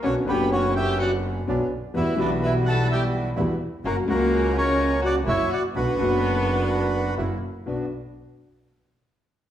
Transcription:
<<
  \new Staff \with { instrumentName = "Bandoneon" } { \time 4/4 \key b \minor \tempo 4 = 126 <fis' cis''>8 <g' b'>8 <fis' cis''>8 <e'' g''>8 <d'' fis''>8 r4. | <b' e''>8 <b' d''>8 <b' e''>8 <fis'' a''>8 <e'' g''>8 r4. | <fis' ais'>8 <fis' ais'>4 <ais' cis''>4 <d'' fis''>8 <cis'' e''>8 <d'' fis''>8 | <fis' b'>2. r4 |
r1 | }
  \new Staff \with { instrumentName = "Violin" } { \time 4/4 \key b \minor cis'8 b8 cis'8 g'8 fis'8 r4. | e'8 d'8 e'8 a'8 g'8 r4. | ais8 ais4 cis'4 fis'8 e'8 fis'8 | b2. r4 |
r1 | }
  \new Staff \with { instrumentName = "Bandoneon" } { \time 4/4 \key b \minor <b cis' d'>8 <b cis'>2~ <b cis'>8 <b cis' d'>8 r8 | <g e' fis'>8 <g e' fis'>2~ <g e' fis'>8 <g e' fis'>8 r8 | <ais cis' fis'>8 <ais cis' fis'>2~ <ais cis' fis'>8 <ais cis' fis'>8 r8 | <b d' fis'>8 <b d' fis'>2~ <b d' fis'>8 <ais e' fis'>8 r8 |
<b d' fis'>8 r2. r8 | }
  \new Staff \with { instrumentName = "Upright piano" } { \clef bass \time 4/4 \key b \minor <b,, b, d b cis' fis'>8 <fis,, fis, d b cis' fis'>2~ <fis,, fis, d b cis' fis'>8 <b,, b, d b cis' fis'>8 r8 | <e, e g b fis'>8 <b,, b, e g b fis'>2~ <b,, b, e g b fis'>8 <e, e g b fis'>8 r8 | <fis, cis fis ais fis'>8 <cis, cis fis ais fis'>2~ <cis, cis fis ais fis'>8 <fis, cis fis ais fis'>8 r8 | <b,, b, d fis b fis'>8 <fis,, fis, d fis b fis'>2~ <fis,, fis, d fis b fis'>8 <fis, cis fis ais e'>8 r8 |
<b,, b d' fis'>8 r2. r8 | }
  \new Staff \with { instrumentName = "Double bass" } { \clef bass \time 4/4 \key b \minor b,,8 fis,,2~ fis,,8 b,,8 r8 | e,8 b,,2~ b,,8 e,8 r8 | fis,,8 cis,2~ cis,8 fis,,8 r8 | b,,8 fis,,2~ fis,,8 fis,,8 r8 |
b,,8 r2. r8 | }
>>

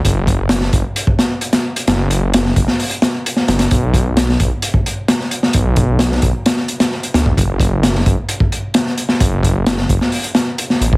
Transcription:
<<
  \new Staff \with { instrumentName = "Detuned saw bass" } { \clef bass \time 4/4 \key fis \phrygian \tempo 4 = 131 fis,,4. fis,,8 r2 | fis,,4. fis,,8 r4. fis,,8 | b,,4. b,,8 r2 | b,,4. b,,8 r4. d,8 |
fis,,4. fis,,8 r2 | fis,,4. fis,,8 r4. a,,8 | }
  \new DrumStaff \with { instrumentName = "Drums" } \drummode { \time 4/4 <hh bd>8 <hh bd>8 <hh sn>16 sn16 <hh bd>8 hh16 bd16 <hh sn>8 hh16 <hh sn>8 hh16 | <hh sn>8 hh8 <hh sn>16 sn16 <hh bd>16 sn16 hho16 hh16 <hh sn>8 hh16 sn16 <hh sn>16 <hh sn>16 | <hh bd>8 <hh bd>8 <hh sn>16 sn16 <hh bd>8 hh16 bd16 hh8 <hh sn>16 sn16 hh16 sn16 | <hh bd>8 <hh bd>8 <hh sn>16 sn16 <hh bd>8 <hh sn>16 sn16 hh16 <hh sn>16 sn16 hh16 <hh sn>16 bd16 |
<hh bd>8 <hh bd>8 <hh sn>16 sn16 <hh bd>8 hh16 bd16 hh8 <hh sn>16 sn16 hh16 sn16 | <hh bd>8 <hh bd>8 <hh sn>16 sn16 <hh bd>16 sn16 hho16 hh16 <hh sn>8 hh16 sn16 hh16 bd16 | }
>>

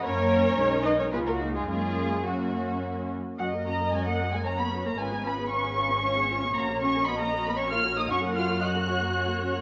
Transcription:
<<
  \new Staff \with { instrumentName = "Violin section" } { \time 3/4 \key fis \major \tempo 4 = 114 ais'4. b'16 ais'16 gis'16 fis'8 eis'16 | eis'4 cis'4. r8 | fis''8 ais''8 gis''16 fis''8 gis''16 ais''16 b''8 ais''16 | gis''8 b''8 cis'''2 |
ais''8 cis'''8 b''16 ais''8 b''16 cis'''16 eis'''8 dis'''16 | cis'''8 eis'''8 fis'''2 | }
  \new Staff \with { instrumentName = "Violin section" } { \time 3/4 \key fis \major cis''4. dis''16 cis''16 b'16 ais'8 gis'16 | gis'4 fis'4. r8 | dis''2 cis''4 | b'2 cis''4 |
cis''4 dis''4 cis''4 | fis''4 dis''8 cis''8 cis''4 | }
  \new Staff \with { instrumentName = "Viola section" } { \time 3/4 \key fis \major << { cis'4 dis'4 eis'8 dis'8 | cis'4 cis'4. r8 | fis'16 ais'16 fis'16 ais'16 fis'16 ais'16 fis'16 ais'16 fis'16 ais'16 fis'16 ais'16 | eis'16 gis'16 eis'16 gis'16 eis'16 gis'16 eis'16 gis'16 eis'16 gis'16 eis'16 gis'16 |
fis'16 ais'16 fis'16 ais'16 fis'16 ais'16 fis'16 ais'16 fis'16 ais'16 fis'16 ais'16 | fis'16 ais'16 fis'16 ais'16 fis'16 ais'16 fis'16 ais'16 fis'16 ais'16 fis'16 ais'16 | } \\ { ais4 gis4 gis4 | ais4 ais4. r8 | cis'16 ais16 cis'16 ais16 cis'16 ais16 cis'16 ais16 cis'16 ais16 cis'16 ais16 | cis'16 b16 cis'16 b16 cis'16 b16 cis'16 b16 cis'16 b16 cis'16 b16 |
cis'16 ais16 cis'16 ais16 cis'16 ais16 cis'16 ais16 cis'16 ais16 cis'16 ais16 | cis'16 ais16 cis'16 ais16 cis'16 ais16 cis'16 ais16 cis'16 ais16 cis'16 ais16 | } >> }
  \new Staff \with { instrumentName = "Cello section" } { \time 3/4 \key fis \major cis'4. dis'16 cis'16 b16 ais8 gis16 | gis4 fis4. r8 | fis8 ais8 gis16 fis8 gis16 ais16 b8 ais16 | gis8 b8 cis'2 |
ais8 cis'8 b16 ais8 b16 cis'16 eis'8 dis'16 | cis'8 eis'8 fis'2 | }
  \new Staff \with { instrumentName = "Double bass section" } { \clef bass \time 3/4 \key fis \major fis,4 b,,4 cis,4 | fis,2~ fis,8 r8 | fis,2. | gis,,2. |
ais,,2. | fis,2. | }
>>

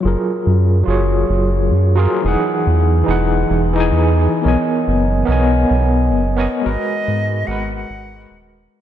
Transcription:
<<
  \new Staff \with { instrumentName = "Flute" } { \time 4/4 \key fis \major \tempo 4 = 109 r1 | r1 | r1 | dis''4. fis''8 fis''4. r8 | }
  \new Staff \with { instrumentName = "Tine electric piano" } { \time 4/4 \key fis \major <fis eis' gis' ais'>4. <fis eis' gis' cis''>2 <fis eis' gis' ais'>8 | <e dis' gis' fis''>4. <e dis' gis' fis''>4~ <e dis' gis' fis''>16 <e dis' gis' gis''>4~ <e dis' gis' gis''>16 | <b ais' cis'' dis'' gis''>4. <b ais' cis'' dis'' gis''>2 <b ais' cis'' dis'' gis''>8 | <gis fis' ais' b'>4. <gis fis' ais' b'>4~ <gis fis' ais' b'>16 <gis fis' ais' b'>4~ <gis fis' ais' b'>16 | }
  \new Staff \with { instrumentName = "Analog synth bass" } { \clef bass \time 4/4 \key fis \major fis,,16 r8 fis,8. fis,,8. fis,,8. fis,8. r16 | e,,16 r8 e,8. e,,8. e,,8. e,8. r16 | b,,16 r8 fis,,8. b,,8. b,,8. fis,,8. r16 | gis,,16 r8 gis,8. gis,,8. gis,,8. dis,,8. r16 | }
>>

